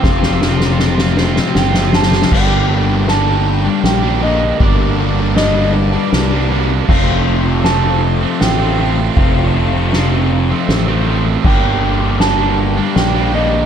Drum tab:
CC |------------------------|x-----------------------|------------------------|x-----------------------|
RD |------------------------|--------x-------x-------|x-------x-------x---x---|--------x-------x-------|
SD |o-o-o-o-o-o-o-o-o-o-oooo|--------o-------o-------|--------o-------o-------|--------o-------o-------|
BD |o-----------------------|o-----------------------|o-----------------------|o-----------------------|

CC |------------------------|x-----------------------|
RD |x-------x-------x---x---|--------x-------x-------|
SD |--------o-------o-------|--------o-------o-------|
BD |o-----------------------|o-----------------------|